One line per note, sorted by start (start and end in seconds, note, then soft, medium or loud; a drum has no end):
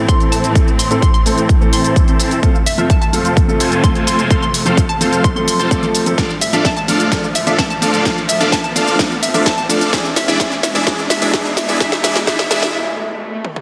0.00 2.39 A2 medium
0.00 2.39 E3 medium
0.00 0.18 C4 medium
0.00 2.39 C4 medium
0.00 0.18 E4 medium
0.00 0.18 A4 medium
0.00 0.18 C5 medium
0.00 0.18 A5 medium
0.00 riser medium
0.08 0.52 A2 medium
0.08 0.53 E3 medium
0.08 0.53 A3 medium
0.08 0.53 C4 medium
0.08 0.53 A4 medium
0.08 0.26 C6 loud
0.08 kick loud
0.08 closed hi-hat medium
0.08 shaker soft
0.20 0.53 C4 medium
0.20 0.53 E4 medium
0.20 0.53 A4 medium
0.20 0.53 C5 medium
0.20 0.53 A5 medium
0.20 closed hi-hat soft
0.20 shaker soft
0.32 0.49 A5 medium
0.32 open hi-hat loud
0.32 shaker medium
0.44 closed hi-hat medium
0.44 shaker soft
0.55 0.66 A2 loud
0.55 0.66 E3 medium
0.55 0.66 A3 medium
0.55 0.70 C4 medium
0.55 0.66 C4 medium
0.55 0.70 E4 medium
0.55 0.70 A4 medium
0.55 0.66 A4 loud
0.55 0.70 C5 medium
0.55 kick loud
0.55 closed hi-hat medium
0.55 shaker soft
0.68 shaker soft
0.79 0.96 C6 medium
0.79 open hi-hat loud
0.79 shaker medium
0.90 1.07 A2 medium
0.90 1.07 E3 medium
0.90 1.07 A3 medium
0.90 1.05 C4 loud
0.90 1.07 C4 medium
0.90 1.05 E4 medium
0.90 1.05 A4 medium
0.90 1.08 A4 loud
0.90 1.05 C5 medium
0.90 1.05 E5 loud
0.90 closed hi-hat medium
0.90 shaker soft
1.02 1.10 C6 medium
1.02 kick loud
1.02 closed hi-hat medium
1.02 shaker soft
1.14 1.22 C6 medium
1.14 closed hi-hat soft
1.14 shaker soft
1.25 1.58 A2 medium
1.25 1.58 E3 medium
1.25 1.58 A3 medium
1.25 1.49 C4 medium
1.25 1.58 C4 medium
1.25 1.49 E4 medium
1.25 1.49 A4 medium
1.25 1.58 A4 loud
1.25 1.49 C5 medium
1.25 1.49 E5 medium
1.25 open hi-hat loud
1.25 shaker medium
1.38 closed hi-hat medium
1.38 shaker soft
1.49 kick loud
1.49 closed hi-hat medium
1.49 shaker soft
1.60 1.93 A2 medium
1.60 1.93 E3 medium
1.60 1.93 A3 medium
1.60 1.93 C4 medium
1.60 1.94 A4 loud
1.60 shaker soft
1.73 2.05 C4 medium
1.73 2.05 E4 medium
1.73 2.05 A4 medium
1.73 2.05 C5 medium
1.73 2.05 A5 medium
1.73 2.08 C6 medium
1.73 open hi-hat loud
1.73 shaker medium
1.84 closed hi-hat medium
1.84 shaker soft
1.96 2.40 E3 medium
1.96 2.40 A3 medium
1.96 2.40 C4 medium
1.96 2.41 A4 medium
1.96 kick loud
1.96 closed hi-hat medium
1.96 shaker soft
2.08 2.40 C4 medium
2.08 2.40 E4 medium
2.08 2.40 A4 medium
2.08 2.40 C5 medium
2.08 2.40 A5 medium
2.08 closed hi-hat soft
2.08 shaker soft
2.20 open hi-hat loud
2.20 shaker medium
2.31 closed hi-hat medium
2.31 shaker soft
2.42 6.14 F2 medium
2.42 6.14 C3 medium
2.42 2.53 F3 loud
2.42 2.53 A3 medium
2.42 6.14 A3 medium
2.42 2.57 C4 medium
2.42 2.53 C4 medium
2.42 2.57 F4 medium
2.42 2.54 A4 loud
2.42 2.57 C5 medium
2.42 2.57 F5 medium
2.42 kick loud
2.42 closed hi-hat medium
2.42 shaker soft
2.55 shaker soft
2.66 2.74 E5 medium
2.66 open hi-hat loud
2.66 shaker medium
2.78 2.94 F3 medium
2.78 2.95 A3 medium
2.78 2.95 C4 medium
2.78 2.92 C4 medium
2.78 2.92 F4 medium
2.78 2.92 A4 medium
2.78 2.95 A4 loud
2.78 2.92 C5 medium
2.78 2.86 E5 medium
2.78 2.92 F5 loud
2.78 closed hi-hat medium
2.78 shaker soft
2.90 2.97 A5 medium
2.90 kick loud
2.90 closed hi-hat medium
2.90 shaker soft
3.02 3.09 A5 medium
3.02 closed hi-hat soft
3.02 shaker soft
3.13 3.45 F3 medium
3.13 3.46 A3 medium
3.13 3.46 C4 medium
3.13 3.36 C4 medium
3.13 3.36 F4 medium
3.13 3.36 A4 medium
3.13 3.46 A4 loud
3.13 3.36 C5 medium
3.13 3.36 F5 loud
3.13 open hi-hat loud
3.13 shaker medium
3.25 closed hi-hat soft
3.25 shaker soft
3.37 kick loud
3.37 closed hi-hat medium
3.37 shaker soft
3.48 3.80 F3 medium
3.48 3.81 A3 medium
3.48 3.81 C4 medium
3.48 3.81 A4 loud
3.48 shaker soft
3.60 3.93 C4 medium
3.60 3.93 F4 medium
3.60 3.93 A4 medium
3.60 3.93 C5 medium
3.60 3.93 G#5 medium
3.60 open hi-hat loud
3.60 shaker medium
3.72 closed hi-hat medium
3.72 shaker soft
3.83 4.27 F3 medium
3.83 4.27 A3 medium
3.83 4.28 C4 medium
3.83 4.28 A4 medium
3.83 4.01 C6 medium
3.83 kick loud
3.83 closed hi-hat medium
3.83 shaker soft
3.95 4.28 C4 medium
3.95 4.28 F4 medium
3.95 4.28 A4 medium
3.95 4.28 C5 medium
3.95 4.28 G#5 medium
3.95 closed hi-hat soft
3.95 shaker soft
4.07 4.28 C6 medium
4.07 open hi-hat loud
4.07 shaker medium
4.19 closed hi-hat soft
4.19 shaker soft
4.30 4.41 F3 loud
4.30 4.41 A3 medium
4.30 4.45 C4 medium
4.30 4.41 C4 medium
4.30 4.45 F4 medium
4.30 4.45 A4 medium
4.30 4.41 A4 loud
4.30 4.45 C5 medium
4.30 4.45 F5 medium
4.30 4.38 C6 medium
4.30 kick loud
4.30 closed hi-hat medium
4.30 shaker soft
4.42 4.50 C6 medium
4.42 shaker soft
4.54 open hi-hat loud
4.54 shaker medium
4.65 4.82 F3 medium
4.65 4.82 A3 medium
4.65 4.80 C4 loud
4.65 4.82 C4 medium
4.65 4.80 F4 medium
4.65 4.80 A4 medium
4.65 4.83 A4 loud
4.65 4.80 C5 medium
4.65 4.80 F5 loud
4.65 closed hi-hat soft
4.65 shaker soft
4.77 kick loud
4.77 closed hi-hat medium
4.77 shaker soft
4.89 5.22 A5 loud
4.89 closed hi-hat soft
4.89 shaker soft
5.00 5.33 F3 medium
5.00 5.33 A3 medium
5.00 5.24 C4 medium
5.00 5.33 C4 medium
5.00 5.24 F4 medium
5.00 5.24 A4 medium
5.00 5.34 A4 loud
5.00 5.24 C5 medium
5.00 5.24 F5 loud
5.00 open hi-hat loud
5.00 shaker medium
5.13 closed hi-hat soft
5.13 shaker soft
5.24 5.32 C6 medium
5.24 kick loud
5.24 closed hi-hat medium
5.24 shaker soft
5.36 5.68 F3 medium
5.36 5.68 A3 medium
5.36 5.68 C4 medium
5.36 5.69 A4 loud
5.36 5.44 C6 medium
5.36 shaker soft
5.48 5.55 C6 medium
5.48 open hi-hat loud
5.48 shaker medium
5.59 5.69 C4 medium
5.59 5.69 F4 medium
5.59 5.69 A4 medium
5.59 5.69 C5 medium
5.59 5.69 A5 medium
5.59 5.67 C6 medium
5.59 closed hi-hat medium
5.59 shaker soft
5.71 5.81 F3 loud
5.71 5.81 A3 medium
5.71 5.85 C4 medium
5.71 5.81 C4 medium
5.71 5.85 F4 medium
5.71 5.81 A4 loud
5.71 5.85 D5 medium
5.71 kick loud
5.71 closed hi-hat medium
5.71 shaker soft
5.82 6.03 F3 medium
5.82 6.03 A3 medium
5.82 6.04 C4 medium
5.82 6.04 A4 loud
5.82 closed hi-hat soft
5.82 shaker soft
5.95 open hi-hat loud
5.95 shaker medium
6.06 6.15 F3 medium
6.06 6.15 A3 medium
6.06 6.15 C4 medium
6.06 6.16 A4 loud
6.06 closed hi-hat soft
6.06 shaker soft
6.18 9.89 D2 medium
6.18 9.89 A2 medium
6.18 6.28 F3 medium
6.18 9.89 F3 loud
6.18 6.28 A3 medium
6.18 6.32 D4 medium
6.18 6.28 D4 medium
6.18 6.32 F4 medium
6.18 6.32 A4 medium
6.18 6.29 A4 loud
6.18 6.32 D5 medium
6.18 6.32 F5 medium
6.18 kick loud
6.18 snare soft
6.18 closed hi-hat medium
6.18 shaker soft
6.30 shaker soft
6.41 6.49 E5 medium
6.41 open hi-hat loud
6.41 shaker medium
6.53 6.69 F3 medium
6.53 6.70 A3 medium
6.53 6.67 D4 medium
6.53 6.70 D4 medium
6.53 6.67 F4 medium
6.53 6.67 A4 medium
6.53 6.70 A4 loud
6.53 6.67 D5 medium
6.53 6.61 E5 medium
6.53 6.67 F5 loud
6.53 closed hi-hat medium
6.53 shaker soft
6.65 6.73 A5 medium
6.65 kick loud
6.65 snare soft
6.65 closed hi-hat medium
6.65 shaker soft
6.77 6.84 A5 medium
6.77 closed hi-hat soft
6.77 shaker soft
6.88 7.10 F3 medium
6.88 7.10 A3 medium
6.88 7.10 D4 medium
6.88 7.10 F4 medium
6.88 7.10 A4 medium
6.88 7.10 A4 loud
6.88 7.10 D5 medium
6.88 7.10 F5 medium
6.88 open hi-hat loud
6.88 shaker medium
7.00 closed hi-hat medium
7.00 shaker soft
7.11 7.22 F3 medium
7.11 7.22 A3 medium
7.11 7.26 D4 medium
7.11 7.22 D4 medium
7.11 7.22 A4 loud
7.11 7.26 D5 medium
7.11 kick loud
7.11 snare medium
7.11 closed hi-hat medium
7.11 shaker soft
7.24 shaker soft
7.35 7.43 E5 medium
7.35 open hi-hat loud
7.35 shaker medium
7.46 7.63 F3 medium
7.46 7.63 A3 medium
7.46 7.61 D4 medium
7.46 7.64 D4 medium
7.46 7.61 F4 medium
7.46 7.61 A4 medium
7.46 7.64 A4 loud
7.46 7.61 D5 medium
7.46 7.54 E5 medium
7.46 7.61 F5 loud
7.46 closed hi-hat medium
7.46 shaker soft
7.59 7.66 A5 medium
7.59 kick loud
7.59 snare medium
7.59 closed hi-hat medium
7.59 shaker soft
7.70 7.78 A5 medium
7.70 closed hi-hat soft
7.70 shaker soft
7.82 8.03 F3 medium
7.82 8.04 A3 medium
7.82 8.04 D4 medium
7.82 8.04 F4 medium
7.82 8.04 A4 medium
7.82 8.04 A4 loud
7.82 8.04 D5 medium
7.82 8.04 F5 medium
7.82 open hi-hat loud
7.82 shaker medium
7.94 closed hi-hat medium
7.94 shaker soft
8.05 8.16 F3 loud
8.05 8.16 A3 medium
8.05 8.20 D4 medium
8.05 8.16 D4 medium
8.05 8.20 F4 medium
8.05 8.20 A4 medium
8.05 8.16 A4 loud
8.05 8.20 D5 medium
8.05 8.20 F5 medium
8.05 kick loud
8.05 snare medium
8.05 closed hi-hat medium
8.05 shaker soft
8.18 shaker soft
8.29 8.36 E5 medium
8.29 open hi-hat loud
8.29 shaker medium
8.40 8.57 F3 medium
8.40 8.57 A3 medium
8.40 8.55 D4 medium
8.40 8.57 D4 medium
8.40 8.55 F4 medium
8.40 8.55 A4 medium
8.40 8.58 A4 loud
8.40 8.55 D5 medium
8.40 8.48 E5 medium
8.40 8.55 F5 loud
8.40 closed hi-hat medium
8.40 shaker soft
8.52 8.60 A5 medium
8.52 kick loud
8.52 snare medium
8.52 closed hi-hat medium
8.52 shaker soft
8.64 8.72 A5 medium
8.64 closed hi-hat soft
8.64 shaker soft
8.75 8.97 F3 medium
8.75 8.97 A3 medium
8.75 8.97 D4 medium
8.75 8.98 D4 medium
8.75 8.97 F4 medium
8.75 8.97 A4 medium
8.75 8.98 A4 loud
8.75 8.97 D5 medium
8.75 8.97 F5 loud
8.75 open hi-hat loud
8.75 shaker medium
8.88 closed hi-hat medium
8.88 shaker soft
8.99 9.09 F3 medium
8.99 9.10 A3 medium
8.99 9.13 D4 medium
8.99 9.10 D4 medium
8.99 9.13 F4 medium
8.99 9.10 A4 loud
8.99 9.13 F5 medium
8.99 kick loud
8.99 snare medium
8.99 closed hi-hat medium
8.99 shaker soft
9.12 shaker soft
9.22 9.30 E5 medium
9.22 open hi-hat loud
9.22 shaker medium
9.34 9.51 F3 medium
9.34 9.51 A3 medium
9.34 9.49 D4 loud
9.34 9.51 D4 medium
9.34 9.49 F4 medium
9.34 9.49 A4 medium
9.34 9.51 A4 loud
9.34 9.49 D5 medium
9.34 9.42 E5 medium
9.34 9.49 F5 loud
9.34 closed hi-hat medium
9.34 shaker soft
9.46 9.54 A5 medium
9.46 kick loud
9.46 snare medium
9.46 closed hi-hat medium
9.46 shaker soft
9.58 9.65 A5 medium
9.58 closed hi-hat soft
9.58 shaker soft
9.69 9.91 F3 medium
9.69 9.91 A3 medium
9.69 9.91 D4 medium
9.69 9.91 F4 medium
9.69 9.91 A4 medium
9.69 9.91 A4 loud
9.69 9.91 D5 medium
9.69 9.91 F5 medium
9.69 open hi-hat loud
9.69 shaker medium
9.81 closed hi-hat soft
9.81 shaker soft
9.92 13.61 E2 medium
9.92 13.61 B2 medium
9.92 10.03 E3 medium
9.92 10.03 G#3 medium
9.92 13.61 G#3 medium
9.92 10.07 D4 medium
9.92 10.03 D4 medium
9.92 10.07 E4 medium
9.92 10.07 G#4 medium
9.92 10.04 G#4 loud
9.92 10.07 D5 medium
9.92 10.07 E5 medium
9.92 kick loud
9.92 snare medium
9.92 closed hi-hat medium
9.92 shaker soft
10.05 shaker soft
10.16 10.24 E5 medium
10.16 snare medium
10.16 open hi-hat loud
10.16 shaker medium
10.28 10.38 E3 medium
10.28 10.38 G#3 medium
10.28 10.38 D4 loud
10.28 10.38 D4 medium
10.28 10.38 E4 medium
10.28 10.38 G#4 medium
10.28 10.38 G#4 loud
10.28 10.38 D5 medium
10.28 10.36 E5 medium
10.28 10.38 E5 loud
10.28 closed hi-hat medium
10.28 shaker soft
10.39 10.50 E3 medium
10.39 10.50 G#3 medium
10.39 10.54 D4 medium
10.39 10.50 D4 medium
10.39 10.54 E4 medium
10.39 10.54 G#4 medium
10.39 10.50 G#4 loud
10.39 10.54 D5 medium
10.39 10.54 E5 medium
10.39 kick loud
10.39 snare medium
10.39 closed hi-hat medium
10.39 shaker soft
10.52 closed hi-hat soft
10.52 shaker soft
10.63 10.71 E5 medium
10.63 snare medium
10.63 open hi-hat loud
10.63 shaker medium
10.74 10.85 E3 medium
10.74 10.85 G#3 medium
10.74 10.85 D4 loud
10.74 10.85 D4 medium
10.74 10.85 E4 medium
10.74 10.85 G#4 medium
10.74 10.85 G#4 loud
10.74 10.85 D5 loud
10.74 10.82 E5 medium
10.74 10.85 E5 loud
10.74 closed hi-hat medium
10.74 shaker soft
10.86 10.97 E3 loud
10.86 10.97 G#3 medium
10.86 11.01 D4 medium
10.86 10.97 D4 medium
10.86 11.01 E4 medium
10.86 11.01 G#4 medium
10.86 10.97 G#4 loud
10.86 11.01 D5 medium
10.86 11.01 E5 medium
10.86 kick loud
10.86 snare medium
10.86 closed hi-hat medium
10.86 shaker soft
10.99 shaker soft
11.10 11.18 E5 medium
11.10 snare medium
11.10 open hi-hat loud
11.10 shaker medium
11.21 11.31 E3 loud
11.21 11.32 G#3 medium
11.21 11.32 D4 loud
11.21 11.32 D4 medium
11.21 11.32 E4 medium
11.21 11.32 G#4 medium
11.21 11.32 G#4 loud
11.21 11.32 D5 medium
11.21 11.29 E5 medium
11.21 11.32 E5 loud
11.21 closed hi-hat medium
11.21 shaker soft
11.33 11.44 E3 medium
11.33 11.44 G#3 medium
11.33 11.48 D4 medium
11.33 11.44 D4 medium
11.33 11.48 E4 medium
11.33 11.48 G#4 medium
11.33 11.44 G#4 loud
11.33 11.48 E5 medium
11.33 kick loud
11.33 snare medium
11.33 closed hi-hat medium
11.33 shaker soft
11.45 closed hi-hat soft
11.45 shaker soft
11.57 11.64 E5 medium
11.57 snare loud
11.57 open hi-hat loud
11.57 shaker medium
11.68 11.78 E3 loud
11.68 11.78 G#3 medium
11.68 11.79 D4 medium
11.68 11.79 D4 loud
11.68 11.79 E4 loud
11.68 11.79 G#4 medium
11.68 11.79 G#4 loud
11.68 11.79 D5 medium
11.68 11.76 E5 medium
11.68 11.79 E5 loud
11.68 closed hi-hat medium
11.68 shaker soft
11.80 11.90 E3 loud
11.80 11.91 G#3 medium
11.80 11.91 D4 medium
11.80 11.95 D4 medium
11.80 11.95 G#4 medium
11.80 11.91 G#4 loud
11.80 11.88 E5 medium
11.80 kick loud
11.80 snare medium
11.80 closed hi-hat medium
11.80 shaker soft
11.92 12.00 E5 medium
11.92 snare medium
11.92 shaker soft
12.03 12.14 E3 loud
12.03 12.14 G#3 medium
12.03 12.18 D4 medium
12.03 12.14 D4 medium
12.03 12.18 E4 medium
12.03 12.18 G#4 medium
12.03 12.14 G#4 loud
12.03 12.18 D5 medium
12.03 12.18 E5 medium
12.03 12.12 E5 medium
12.03 snare medium
12.03 open hi-hat loud
12.03 shaker medium
12.16 12.23 E5 medium
12.16 snare medium
12.16 closed hi-hat medium
12.16 shaker soft
12.27 12.37 E3 medium
12.27 12.37 G#3 medium
12.27 12.38 D4 medium
12.27 12.42 D4 medium
12.27 12.42 E4 medium
12.27 12.42 G#4 medium
12.27 12.38 G#4 loud
12.27 12.42 D5 medium
12.27 12.42 E5 medium
12.27 12.35 E5 medium
12.27 kick loud
12.27 snare loud
12.27 closed hi-hat medium
12.27 shaker soft
12.39 12.47 E5 medium
12.39 snare medium
12.39 closed hi-hat soft
12.39 shaker soft
12.50 12.61 E3 loud
12.50 12.61 G#3 loud
12.50 12.65 D4 medium
12.50 12.61 D4 medium
12.50 12.65 E4 medium
12.50 12.65 G#4 medium
12.50 12.61 G#4 loud
12.50 12.65 D5 medium
12.50 12.58 E5 medium
12.50 12.65 E5 medium
12.50 snare loud
12.50 open hi-hat loud
12.50 shaker medium
12.62 12.70 E5 medium
12.62 snare medium
12.62 closed hi-hat medium
12.62 shaker soft
12.74 swell medium
13.45 high tom medium
13.56 mid tom medium